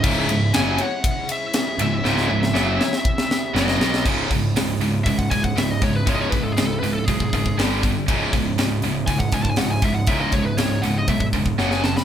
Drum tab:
CC |x---------------|----------------|x---------------|----------------|
RD |--x-x-x-x-x-x-x-|----------------|----------------|----------------|
HH |----------------|----------------|--o-o-o-o-o-o-o-|o-o-o-o-o-o-o-o-|
SD |----o-------o---|oo-oo-oo-oo-oooo|----o-------o---|----o-------o---|
BD |o-------o-------|--------o-------|o-o-----oooo--o-|o-o-----oooo--o-|

CC |x---------------|----------------|
RD |----------------|----------------|
HH |--o-o-o-o-o-o-o-|o-o-o-o-o-o-----|
SD |----o-------o---|----o-------oooo|
BD |o-o-----oooo--o-|o-o-----oooo----|